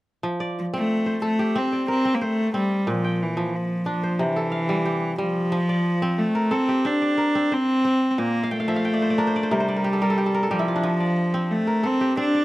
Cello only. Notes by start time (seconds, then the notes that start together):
0.59 F3
0.76 A3
1.25 A3
1.58 C4
1.90 C4
2.14 A#3
2.23 A3
2.55 G3
2.90 F3
3.23 E3
3.56 F3
3.89 F3
4.22 E3
5.20 F3
6.18 A3
6.52 C4
6.86 D4
7.53 C4
8.10 C4
8.18 A#3
8.51 A3
9.51 G3
10.51 F3
11.51 A3
11.86 C4
12.19 D4